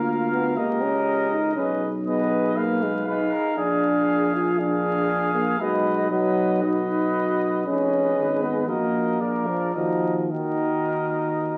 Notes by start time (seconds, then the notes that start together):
Already playing: D2 A#3 F4 A#4 F5
0.32 B3
0.56 C#2 A#3 G4 A#4 D#5
0.81 C#4
1.31 D#4
1.55 B1 C#4 G#4 B4 D#5
2.06 B3 G#4 B4 D#5
2.57 A#3 G#4 B4 F5
2.83 G#3
3.06 D#4 G#4 B4 F5
3.31 A#4
3.57 A#1 D4 G#4 F5
4.34 F4
4.58 D4 G#4 F5
5.34 A#3
5.60 B1 G#3 F#4 B4 D#5
6.10 F#3 F#4 B4 D#5
6.62 D#4 F#4 B4 D#5
7.66 F1 C#4 G#4 B4 D#5
8.17 G#1
8.42 B3
8.66 A#1 A#3 F#4 A#4 D#5
9.20 A#1 G#4 A#4 D5
9.47 F3
9.74 D#2 F3 F#4 A#4 D#5
10.31 D#3 F#4 A#4 D#5